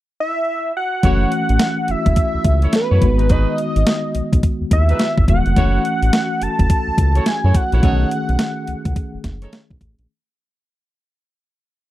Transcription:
0.20 0.72 E5 loud
0.77 1.92 F#5 loud
1.03 1.26 F#1 medium
1.03 2.98 E3 medium
1.03 2.98 A3 medium
1.03 2.98 C#4 medium
1.03 1.30 E4 medium
1.03 1.30 F#4 medium
1.03 2.99 F#4 medium
1.03 1.30 A4 medium
1.03 1.30 C#5 loud
1.03 kick loud
1.03 closed hi-hat medium
1.32 closed hi-hat medium
1.49 1.58 A1 medium
1.49 closed hi-hat medium
1.59 snare loud
1.59 closed hi-hat medium
1.88 1.96 F#1 soft
1.88 2.75 E5 loud
1.88 closed hi-hat medium
2.06 2.15 F#1 medium
2.06 kick medium
2.06 closed hi-hat medium
2.16 kick medium
2.16 closed hi-hat medium
2.34 2.39 C#2 soft
2.44 2.67 C#2 medium
2.44 kick medium
2.44 closed hi-hat medium
2.62 2.79 E4 medium
2.62 2.79 F#4 medium
2.62 2.79 A4 medium
2.62 2.79 C#5 medium
2.62 closed hi-hat soft
2.73 3.33 B4 medium
2.73 snare loud
2.73 closed hi-hat medium
2.90 3.00 F#2 medium
2.90 3.07 E4 medium
2.90 3.07 F#4 medium
2.90 3.07 A4 medium
2.90 3.07 C#5 medium
3.01 3.46 G#1 loud
3.01 5.24 D#3 medium
3.01 5.24 G#3 medium
3.01 5.25 B3 medium
3.01 5.25 F#4 medium
3.01 kick medium
3.01 closed hi-hat medium
3.18 3.28 D#4 medium
3.18 3.28 F#4 medium
3.18 3.28 G#4 medium
3.18 3.28 B4 medium
3.18 closed hi-hat soft
3.29 3.56 D#4 medium
3.29 3.56 F#4 medium
3.29 3.56 G#4 medium
3.29 3.56 B4 loud
3.29 4.44 D#5 loud
3.29 kick loud
3.29 closed hi-hat medium
3.58 closed hi-hat medium
3.76 3.84 G#1 medium
3.76 closed hi-hat medium
3.87 snare loud
3.87 closed hi-hat medium
4.15 4.22 B1 medium
4.15 closed hi-hat medium
4.33 4.41 B1 medium
4.33 kick medium
4.33 closed hi-hat medium
4.43 kick medium
4.43 closed hi-hat medium
4.61 4.65 D#2 soft
4.71 4.94 D#2 loud
4.71 5.25 E5 loud
4.71 kick medium
4.71 closed hi-hat medium
4.89 5.05 D#4 medium
4.89 5.05 F#4 medium
4.89 5.06 G#4 medium
4.89 5.06 B4 medium
4.89 closed hi-hat medium
4.99 snare loud
4.99 closed hi-hat medium
5.18 5.26 G#1 loud
5.18 kick medium
5.28 5.42 E1 medium
5.28 5.56 D#3 medium
5.28 5.57 G#3 soft
5.28 5.57 B3 soft
5.28 5.57 F#4 medium
5.28 6.44 F#5 loud
5.28 kick loud
5.28 closed hi-hat medium
5.46 5.54 F1 loud
5.46 closed hi-hat soft
5.56 5.79 F#1 loud
5.56 7.79 E3 medium
5.56 7.79 A3 medium
5.56 7.79 C#4 medium
5.56 5.83 E4 loud
5.56 5.83 F#4 medium
5.56 7.80 F#4 medium
5.56 5.83 A4 medium
5.56 5.83 C#5 loud
5.56 kick loud
5.56 closed hi-hat medium
5.85 closed hi-hat medium
6.02 6.11 A1 medium
6.02 closed hi-hat soft
6.13 snare loud
6.13 closed hi-hat medium
6.41 6.48 F#1 soft
6.41 7.29 A5 loud
6.41 closed hi-hat medium
6.59 6.68 F#1 medium
6.59 kick medium
6.59 closed hi-hat soft
6.70 kick loud
6.70 closed hi-hat medium
6.87 6.92 C#2 soft
6.98 7.20 C#2 medium
6.98 kick loud
6.98 closed hi-hat medium
7.15 7.32 E4 medium
7.15 7.32 F#4 medium
7.15 7.32 A4 medium
7.15 7.32 C#5 medium
7.15 closed hi-hat soft
7.26 7.58 G#5 loud
7.26 snare loud
7.26 closed hi-hat medium
7.43 7.53 F#2 medium
7.43 7.60 E4 medium
7.43 7.60 F#4 medium
7.43 7.60 A4 medium
7.43 7.60 C#5 medium
7.54 9.53 F#5 loud
7.54 kick medium
7.54 closed hi-hat medium
7.72 7.81 A#1 loud
7.72 7.88 E4 medium
7.72 7.88 F#4 medium
7.72 7.82 A4 medium
7.72 7.82 C#5 medium
7.72 closed hi-hat soft
7.83 8.05 B1 loud
7.83 7.91 C#3 medium
7.83 10.05 A3 medium
7.83 10.06 C#4 medium
7.83 8.09 D#4 loud
7.83 8.09 G#4 medium
7.83 10.06 G#4 medium
7.83 8.10 A4 medium
7.83 8.10 C#5 loud
7.83 kick loud
7.83 closed hi-hat medium
7.89 10.08 D#3 medium
8.11 closed hi-hat medium
8.29 8.37 B1 medium
8.29 closed hi-hat soft
8.39 snare loud
8.39 closed hi-hat medium
8.67 8.75 C#2 soft
8.67 closed hi-hat medium
8.85 8.94 C#2 medium
8.85 kick medium
8.85 closed hi-hat soft
8.96 kick medium
8.96 closed hi-hat medium
9.14 9.18 F#1 soft
9.24 9.47 F#1 medium
9.24 kick medium
9.24 snare medium
9.24 closed hi-hat medium
9.42 9.58 D#4 medium
9.42 9.58 G#4 medium
9.42 9.58 A4 medium
9.42 9.58 C#5 medium
9.42 closed hi-hat medium
9.53 snare loud
9.53 closed hi-hat medium
9.70 9.79 B1 medium
9.70 kick medium
9.81 9.95 A1 medium
9.81 kick medium
9.81 closed hi-hat medium
9.99 10.07 A#1 medium
9.99 closed hi-hat soft

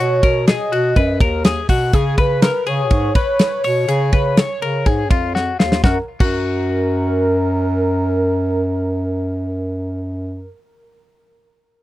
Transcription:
0.00 0.19 B2 loud
0.00 0.23 F#4 loud
0.00 0.50 C#5 loud
0.23 0.54 B2 medium
0.23 0.47 A#4 medium
0.23 kick medium
0.23 ride medium
0.48 0.72 G#4 medium
0.48 1.21 D#5 medium
0.48 snare loud
0.48 ride medium
0.71 0.92 B2 loud
0.71 0.97 F#4 medium
0.71 ride medium
0.96 1.17 F#2 loud
0.96 1.21 B4 medium
0.96 kick medium
0.96 ride medium
1.20 1.62 D#2 medium
1.20 1.45 A#4 medium
1.20 kick loud
1.20 ride medium
1.44 1.69 G#4 medium
1.44 snare loud
1.44 ride medium
1.69 1.90 B2 loud
1.69 1.94 F#4 medium
1.69 kick medium
1.69 open hi-hat medium
1.69 ride medium
1.93 2.14 C#3 loud
1.93 2.18 G#4 loud
1.93 2.21 G#4 medium
1.93 kick loud
1.93 hi-hat pedal medium
1.93 ride medium
2.18 2.49 C#3 loud
2.18 2.42 B4 medium
2.18 2.69 B4 loud
2.18 kick medium
2.18 ride medium
2.42 2.66 A#4 medium
2.42 snare loud
2.42 ride medium
2.66 2.92 C#3 loud
2.66 3.13 G#4 medium
2.66 5.35 C#5 loud
2.66 ride medium
2.90 3.12 G#2 loud
2.90 kick loud
2.90 ride medium
3.15 3.61 B4 medium
3.15 kick loud
3.15 ride medium
3.39 snare loud
3.39 ride medium
3.64 3.85 B2 medium
3.64 3.89 C#5 medium
3.64 open hi-hat medium
3.64 ride soft
3.88 4.09 C#3 loud
3.88 4.13 G#4 loud
3.88 hi-hat pedal medium
3.88 ride medium
4.13 4.44 C#3 loud
4.13 4.38 B4 medium
4.13 kick medium
4.13 ride medium
4.37 4.62 C#5 medium
4.37 snare loud
4.37 ride medium
4.61 4.82 C#3 medium
4.61 4.86 A#4 medium
4.61 ride medium
4.86 5.12 G#2 medium
4.86 5.10 G#4 medium
4.86 kick medium
4.86 ride medium
5.10 5.52 F2 medium
5.10 5.35 F4 medium
5.10 kick loud
5.10 ride medium
5.35 5.59 F#4 medium
5.35 snare medium
5.59 5.80 D#2 medium
5.59 5.84 F4 medium
5.59 snare loud
5.72 snare medium
5.83 5.97 F#2 loud
5.83 5.97 F#4 medium
5.83 5.97 A#4 medium
5.83 kick loud
5.83 snare medium
6.20 10.49 F#2 loud
6.20 7.26 F#4 medium
6.20 10.49 A#4 loud
6.20 kick loud
6.20 crash medium

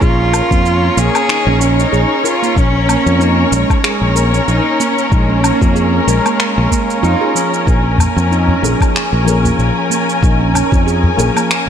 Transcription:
0.00 0.40 A#1 medium
0.00 11.69 C#4 medium
0.00 1.00 F4 loud
0.00 0.18 G#4 medium
0.00 11.69 A#4 medium
0.00 7.67 C#5 medium
0.00 kick loud
0.00 shaker soft
0.33 0.44 A#4 medium
0.33 low woodblock medium
0.33 shaker medium
0.51 0.88 F2 medium
0.51 0.64 A#3 medium
0.51 kick medium
0.51 shaker soft
0.66 shaker soft
0.97 1.08 A#1 medium
0.97 1.07 A#3 medium
0.97 1.63 G#4 loud
0.97 shaker medium
1.15 low woodblock medium
1.15 shaker soft
1.29 1.46 D#4 medium
1.29 finger snap medium
1.29 shaker soft
1.47 1.84 A#1 loud
1.47 1.60 C#4 medium
1.61 1.79 C#4 medium
1.61 1.78 C#4 medium
1.61 shaker medium
1.79 2.27 D#4 medium
1.79 shaker soft
1.92 2.04 A#1 medium
1.92 2.10 G#4 medium
1.92 shaker soft
2.24 2.58 F4 medium
2.24 2.35 A#4 medium
2.24 shaker medium
2.42 2.56 A#3 medium
2.42 shaker soft
2.56 2.95 A#1 medium
2.56 3.23 C#4 loud
2.56 kick loud
2.56 shaker soft
2.89 2.99 A#3 medium
2.89 low woodblock medium
2.89 shaker medium
3.06 3.43 F2 medium
3.06 shaker soft
3.20 3.53 A#3 medium
3.20 3.37 D#4 medium
3.20 shaker soft
3.38 3.51 C#4 medium
3.52 3.63 A#1 medium
3.52 3.83 G#3 medium
3.52 3.69 C#4 medium
3.52 shaker medium
3.70 kick medium
3.70 low woodblock medium
3.70 shaker soft
3.84 4.18 G#3 medium
3.84 4.01 G#4 medium
3.84 finger snap medium
3.84 shaker soft
4.01 4.39 A#1 medium
4.16 4.50 A#3 medium
4.16 4.26 A#4 medium
4.16 shaker medium
4.34 4.47 A#3 medium
4.34 shaker soft
4.48 4.59 A#1 medium
4.48 4.81 D#4 medium
4.48 shaker soft
4.80 4.90 A#3 medium
4.80 5.11 C#4 medium
4.80 shaker medium
4.98 shaker soft
5.12 5.50 A#1 medium
5.12 5.44 G#3 medium
5.12 5.29 D#4 medium
5.12 kick loud
5.12 shaker soft
5.29 5.42 C#4 medium
5.43 6.07 A#3 medium
5.43 5.61 C#4 medium
5.43 low woodblock medium
5.43 shaker medium
5.61 5.99 F2 medium
5.61 kick medium
5.61 shaker soft
5.76 5.93 G#4 medium
5.76 shaker soft
6.07 6.18 A#1 medium
6.07 7.04 G#3 medium
6.07 6.18 A#4 medium
6.07 shaker medium
6.26 6.39 A#3 medium
6.26 low woodblock medium
6.26 shaker soft
6.40 finger snap medium
6.40 shaker soft
6.58 6.66 A#1 loud
6.71 6.82 A#3 medium
6.71 kick medium
6.71 shaker medium
6.90 shaker soft
7.03 7.14 F2 medium
7.03 7.35 D#4 medium
7.03 7.20 F4 loud
7.03 shaker soft
7.21 7.35 G#4 medium
7.35 7.52 F3 medium
7.35 7.50 C#4 medium
7.35 shaker medium
7.54 shaker soft
7.67 8.06 A#1 medium
7.67 11.69 G#5 medium
7.67 kick loud
7.67 shaker soft
7.98 8.09 A#3 medium
7.98 udu medium
7.98 low woodblock medium
7.98 shaker medium
8.17 8.54 F2 medium
8.17 shaker soft
8.31 8.48 D#4 medium
8.31 shaker soft
8.48 8.62 C#4 medium
8.48 udu medium
8.62 8.74 A#1 medium
8.62 8.93 F3 medium
8.62 8.93 A#3 medium
8.62 8.93 C#4 medium
8.62 8.80 C#4 medium
8.62 8.94 G#4 medium
8.62 shaker medium
8.81 kick medium
8.81 low woodblock medium
8.81 shaker soft
8.95 9.12 G#4 medium
8.95 finger snap medium
8.95 shaker soft
9.13 9.50 A#1 medium
9.24 11.14 F3 medium
9.24 11.15 A#3 medium
9.24 11.15 C#4 medium
9.24 9.37 A#4 medium
9.24 shaker medium
9.29 11.16 G#4 medium
9.44 9.58 A#3 medium
9.44 udu medium
9.44 shaker soft
9.59 9.70 A#1 medium
9.59 shaker soft
9.90 10.01 A#3 medium
9.90 shaker medium
10.09 shaker soft
10.23 10.61 A#1 medium
10.23 10.40 D#4 medium
10.23 kick loud
10.23 shaker soft
10.40 10.53 C#4 medium
10.54 10.71 C#4 medium
10.54 udu medium
10.54 low woodblock medium
10.54 shaker medium
10.72 11.09 F2 medium
10.72 kick loud
10.72 shaker soft
10.87 11.03 G#4 medium
10.87 shaker soft
11.03 udu medium
11.17 11.29 A#1 medium
11.17 11.48 F3 medium
11.17 11.48 A#3 medium
11.17 11.49 C#4 medium
11.17 11.49 G#4 medium
11.17 11.29 A#4 medium
11.17 shaker medium
11.36 11.50 A#3 medium
11.36 low woodblock medium
11.36 shaker soft
11.51 finger snap medium
11.51 shaker soft

